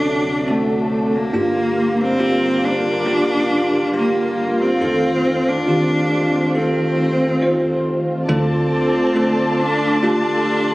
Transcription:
0.00 1.30 D2 soft
0.00 1.29 C3 medium
0.00 1.29 D3 soft
0.00 1.30 F#3 medium
0.00 1.30 A3 soft
0.00 0.47 C4 medium
0.00 0.47 D4 medium
0.00 0.51 D4 medium
0.00 1.30 D4 medium
0.00 0.47 F#4 soft
0.00 0.48 A4 medium
0.47 1.16 A3 medium
0.47 1.29 C4 medium
0.47 1.29 D4 soft
0.47 1.30 F#4 soft
0.47 1.30 A4 medium
1.14 2.03 A#3 medium
1.33 4.77 G2 medium
1.33 4.78 D3 medium
1.33 4.78 G3 medium
1.33 2.16 A#3 medium
1.33 4.78 A#3 medium
1.33 2.16 D4 medium
1.33 8.25 F4 medium
1.33 2.16 F4 soft
1.33 2.17 G4 medium
2.01 2.66 C4 medium
2.19 3.02 A#3 medium
2.19 3.03 D4 soft
2.19 3.03 F4 soft
2.19 3.03 G4 medium
2.65 3.95 D4 medium
3.06 3.89 A#3 medium
3.06 3.89 D4 medium
3.06 3.90 F4 medium
3.06 3.90 G4 medium
3.93 4.77 A#3 medium
3.93 4.62 A#3 medium
3.93 4.77 D4 medium
3.93 4.77 F4 medium
3.93 4.77 G4 medium
4.61 5.49 C4 medium
4.79 8.25 F2 soft
4.79 8.25 D#3 medium
4.79 8.25 A3 soft
4.79 8.25 C4 medium
4.79 5.64 C4 medium
4.79 5.64 D#4 soft
4.79 5.64 F4 soft
4.79 5.64 A4 medium
5.48 6.56 D4 medium
5.67 6.51 D#3 soft
5.67 6.50 C4 medium
5.67 6.51 F4 medium
5.67 6.51 G4 medium
6.54 7.38 C4 medium
6.54 7.83 C4 medium
6.54 7.38 D#4 medium
6.54 7.38 F4 medium
6.54 7.38 A4 medium
7.41 8.25 C4 medium
7.41 8.25 D#4 soft
7.41 8.25 F4 soft
7.41 8.25 C5 medium
8.28 9.59 D2 medium
8.28 9.55 D3 soft
8.28 9.12 A3 medium
8.28 9.62 C4 medium
8.28 9.12 D4 medium
8.28 10.74 F4 medium
8.28 9.12 F4 medium
8.28 10.74 A4 medium
8.28 9.12 A4 medium
8.28 10.74 D5 medium
8.28 10.74 A5 medium
9.15 9.98 A3 medium
9.15 9.98 D4 medium
9.15 9.98 F4 soft
9.15 9.99 A4 medium
9.59 10.74 A1 medium
9.59 10.02 D4 medium
10.02 10.74 A3 medium
10.02 10.74 D4 medium
10.02 10.74 F4 medium
10.02 10.74 G4 medium

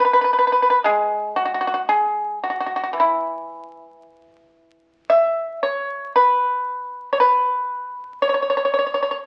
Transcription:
0.05 0.12 B4 soft
0.13 0.20 B4 medium
0.21 0.23 B4 soft
0.21 0.32 B4 soft
0.33 0.37 B4 soft
0.39 0.46 B4 soft
0.47 0.51 B4 soft
0.52 0.61 B4 soft
0.62 0.69 B4 soft
0.70 0.77 B4 soft
0.84 4.02 G#3 medium
0.84 1.34 G#4 medium
1.36 1.44 F#4 medium
1.45 1.52 F#4 soft
1.54 1.60 F#4 soft
1.61 1.66 F#4 soft
1.67 1.73 F#4 soft
1.74 1.81 F#4 soft
1.89 2.38 G#4 medium
2.44 2.49 F#4 soft
2.50 2.57 F#4 soft
2.60 2.65 F#4 soft
2.66 2.73 F#4 soft
2.76 2.81 F#4 soft
2.83 2.89 F#4 soft
2.93 6.15 E3 soft
3.00 4.56 E4 medium
5.10 5.59 E5 medium
5.63 6.12 C#5 medium
6.16 7.09 B4 medium
7.13 7.20 C#5 medium
7.20 8.18 B4 medium
8.22 8.28 C#5 medium
8.29 8.33 C#5 soft
8.34 8.41 C#5 soft
8.42 8.49 C#5 soft
8.50 8.56 C#5 soft
8.57 8.64 C#5 soft
8.65 8.72 C#5 soft
8.74 8.77 C#5 soft
8.79 8.85 C#5 soft
8.86 8.93 C#5 soft
8.94 9.01 C#5 soft
9.03 9.09 C#5 soft
9.11 9.17 C#5 soft

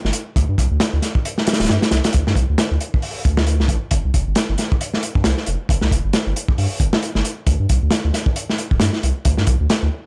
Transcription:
0.04 0.11 G1 medium
0.04 snare soft
0.13 closed hi-hat medium
0.36 0.45 D2 loud
0.36 kick loud
0.36 closed hi-hat medium
0.49 0.55 G2 medium
0.58 0.67 C2 loud
0.58 kick medium
0.58 closed hi-hat medium
0.71 0.78 D2 loud
0.80 snare loud
0.80 closed hi-hat medium
0.93 1.00 D2 loud
1.02 snare soft
1.02 closed hi-hat medium
1.15 kick medium
1.25 closed hi-hat medium
1.38 snare soft
1.47 snare medium
1.47 closed hi-hat medium
1.53 snare medium
1.53 closed hi-hat medium
1.60 1.67 D1 medium
1.60 snare medium
1.60 closed hi-hat medium
1.64 snare medium
1.64 closed hi-hat medium
1.69 1.79 G2 loud
1.69 snare medium
1.69 closed hi-hat medium
1.82 snare loud
1.82 closed hi-hat medium
1.91 2.01 C2 medium
1.91 snare medium
1.91 closed hi-hat medium
2.04 snare medium
2.04 closed hi-hat medium
2.13 2.23 D2 medium
2.13 kick loud
2.13 closed hi-hat medium
2.27 2.34 G2 medium
2.27 snare soft
2.36 2.45 C2 loud
2.36 kick loud
2.36 closed hi-hat medium
2.50 2.56 D2 medium
2.58 snare loud
2.58 closed hi-hat medium
2.71 2.78 D2 medium
2.80 closed hi-hat medium
2.94 kick medium
3.02 open hi-hat medium
3.25 3.61 D2 medium
3.25 kick medium
3.25 closed hi-hat medium
3.37 snare loud
3.47 closed hi-hat medium
3.60 3.67 C2 medium
3.60 snare soft
3.68 3.78 A1 medium
3.68 kick medium
3.68 closed hi-hat medium
3.91 4.01 G1 medium
3.91 kick loud
3.91 closed hi-hat medium
4.05 4.11 C2 medium
4.14 4.23 F1 medium
4.14 kick medium
4.14 closed hi-hat medium
4.27 4.34 G1 loud
4.35 snare loud
4.35 closed hi-hat medium
4.49 4.56 G1 loud
4.58 snare soft
4.58 closed hi-hat medium
4.72 kick loud
4.81 closed hi-hat medium
4.94 snare soft
5.03 closed hi-hat medium
5.15 5.22 G2 medium
5.15 kick medium
5.24 5.34 C2 loud
5.24 snare loud
5.24 closed hi-hat medium
5.37 snare soft
5.46 5.56 F1 medium
5.46 closed hi-hat medium
5.69 5.78 G1 loud
5.69 kick loud
5.69 closed hi-hat medium
5.81 5.89 C2 medium
5.81 snare soft
5.91 6.01 F1 loud
5.91 kick medium
5.91 closed hi-hat medium
6.04 6.11 G1 medium
6.13 snare loud
6.13 closed hi-hat medium
6.26 6.33 G1 medium
6.36 closed hi-hat medium
6.48 kick loud
6.58 6.67 G2 loud
6.58 open hi-hat medium
6.80 6.89 G1 medium
6.80 kick medium
6.80 closed hi-hat medium
6.93 snare loud
7.02 closed hi-hat medium
7.15 7.22 G1 medium
7.15 snare soft
7.25 closed hi-hat medium
7.47 7.56 D2 loud
7.47 kick loud
7.47 closed hi-hat medium
7.60 7.66 G2 medium
7.69 7.79 C2 loud
7.69 kick medium
7.69 closed hi-hat medium
7.83 7.89 D2 loud
7.91 snare loud
7.91 closed hi-hat medium
8.05 8.11 D2 loud
8.14 snare soft
8.14 closed hi-hat medium
8.26 kick loud
8.36 closed hi-hat medium
8.49 snare soft
8.58 closed hi-hat medium
8.71 8.78 D1 medium
8.71 kick medium
8.80 8.90 G2 loud
8.80 snare loud
8.80 closed hi-hat medium
8.93 snare soft
9.03 9.12 C2 medium
9.03 closed hi-hat medium
9.25 9.34 D2 medium
9.25 kick loud
9.25 closed hi-hat medium
9.37 9.45 G2 medium
9.37 snare soft
9.47 9.56 C2 loud
9.47 kick loud
9.47 closed hi-hat medium
9.60 9.67 D2 loud
9.70 snare loud
9.70 closed hi-hat medium
9.82 9.89 D2 loud

